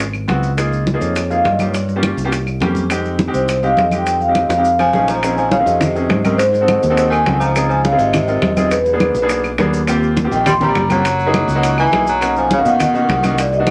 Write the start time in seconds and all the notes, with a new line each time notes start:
Already playing: G#1
0.00 high bongo
0.13 high bongo, high conga, claves, maracas
0.28 C#2 B3 C4 E4 F#4, high bongo, low bongo, high conga, maracas
0.43 high bongo, maracas
0.57 A#3 D#4 F4 G#4, high bongo, high conga, claves, maracas
0.72 high conga, maracas
0.87 high bongo, high conga, maracas
0.94 A#3 D#4 F4 G#4
1.01 F2 C#5, maracas
1.16 high bongo, high conga, claves, maracas
1.30 A#3 D#4 F4 G#4 F5, high conga, maracas
1.44 G2 D#5, high bongo, low bongo, high conga, maracas
1.59 A#3 D#4 F4 G4 C#5, high conga, claves, maracas
1.74 high bongo, high conga, maracas
1.88 high bongo, high conga, maracas
1.96 A#3 C#4 F4 G4
2.03 high bongo, high conga, claves, maracas
2.17 C2, high conga, maracas
2.25 A#3 C#4 F4 G4
2.32 high bongo, high conga, maracas
2.46 high bongo, high conga, claves, maracas
2.61 F2 A#3 C#4 E4 G4, high bongo, low bongo, high conga, maracas
2.75 high bongo, high conga, maracas
2.90 G#3 C4 D#4 G4, high bongo, high conga, claves, maracas
3.04 high conga, maracas
3.19 high bongo, high conga, maracas
3.27 G#3 C4 D#4 G4
3.34 C2 C5, maracas
3.48 high bongo, high conga, claves, maracas
3.63 G#3 C4 D#4 G4 F5, high conga, maracas
3.77 F2 D#5, high bongo, low bongo, high conga, maracas
3.91 G#3 C4 D#4 G4, high conga, claves, maracas
3.97 G5
4.06 high bongo, high conga, maracas
4.20 F5, high bongo, high conga, maracas
4.28 G#3 C4 D#4 G4
4.35 D#5, high bongo, high conga, claves, maracas
4.49 F2 F5, high bongo, high conga, maracas
4.58 G#3 C4 D#4 G4
4.64 high conga, maracas
4.79 F3 G#5, low bongo, high conga, claves, maracas
4.93 A#1 A3 C#4 D#4 G#4, low bongo, high conga, maracas
5.08 F3, low bongo, maracas
5.23 C4 C#4 D#4 G#4, high bongo, high conga, claves, maracas
5.37 F3 G#5, high conga, maracas
5.51 C#3 F5, high bongo, high conga, maracas
5.60 C4 C#4 D#4 G#4
5.65 F2 C3 D#5, maracas
5.81 high bongo, high conga, low conga, claves, maracas
5.96 C4 C#4 D#4 G#4, high conga, maracas
6.09 G#2, high bongo, low bongo, high conga, maracas
6.24 C4 C#4 D#4 A#4, high conga, claves, maracas
6.38 G#2 C5, high bongo, high conga, maracas
6.52 G#2, high bongo, high conga, maracas
6.61 C4 D#4 F#4 A4
6.68 high bongo, high conga, claves, maracas
6.83 D#2, high conga, maracas
6.90 C4 D#4 F#4 A4
6.97 high bongo, high conga, maracas
7.10 D#3 G#5, high bongo, high conga, claves, maracas
7.26 C#2 C4 D#4 F#4 A4, high bongo, low bongo, high conga, maracas
7.39 F3 A#5, high bongo, maracas
7.55 C4 D#4 F4 G#4, high bongo, high conga, claves, maracas
7.69 F3 G#5, high conga, maracas
7.83 C#3 F5, high bongo, high conga, maracas
7.92 C4 D#4 F4 G#4
7.97 G#1 C3 D#5, maracas
8.13 high bongo, high conga, low conga, claves, maracas
8.28 C4 D#4 F4 A#4, high conga, maracas
8.42 E1, high bongo, low bongo, high conga, maracas
8.57 C4 D#4 F4 G#4, high conga, claves, maracas
8.71 G#2 B4, high bongo, high conga, maracas
8.85 G#2 B4, high bongo, high conga, maracas
8.93 A#3 B3 D4 G#4
9.00 high bongo, high conga, claves, maracas
9.15 B1, high conga, maracas
9.22 A#3 B3 D4 G#4
9.29 high bongo, high conga, maracas
9.44 high bongo, high conga, claves, maracas
9.58 D#2 A#3 B3 D4 G#4, high bongo, low bongo, high conga, maracas
9.73 high bongo, maracas
9.87 A#3 C4 F4 G4, high bongo, high conga, claves, maracas
10.03 high conga, maracas
10.17 high bongo, high conga, maracas
10.24 A#3 C4 F4 G4
10.31 A#1 D#3 G5, maracas
10.46 G3 C6, high bongo, high conga, low conga, claves, maracas
10.60 G3 A#3 C4 F4 G4 A#5, high conga, low conga, maracas
10.75 F#1, high bongo, low bongo, high conga, maracas
10.89 F#3 A#3 C4 F4 G4 A#5, high conga, claves, maracas
11.04 high bongo, high conga, maracas
11.20 high bongo, high conga, maracas
11.27 A#3 D#4 E4 G#4
11.34 high bongo, high conga, claves, maracas
11.48 C#2, high conga, maracas
11.55 A#3 D#4 E4 F#4
11.63 high bongo, high conga, maracas
11.78 E3 G#5, high bongo, high conga, claves, maracas
11.92 B1 A#3 D#4 E4 G#4, high bongo, low bongo, high conga, maracas
12.07 F#3 A#5, high bongo, maracas
12.21 A#3 C#4 D#4 F#4, high bongo, high conga, claves, maracas
12.36 F3 G#5, high conga, maracas
12.51 C#3 F5, high bongo, high conga, maracas
12.58 A#3 C#4 D#4 F#4
12.65 B2 D#3 F#5, maracas
12.80 high bongo, high conga, low conga, claves, maracas
12.94 A#3 C#4 D#4 F#4, high conga, maracas
13.09 C2, high bongo, low bongo, high conga, maracas
13.23 A#3 C#4 D#4 F#4, high conga, claves, maracas
13.38 A#2 D5, high bongo, high conga, maracas
13.52 C3 D#5, high bongo, high conga, maracas
13.60 A#3 D4 D#4 F#4
13.67 high bongo, high conga, claves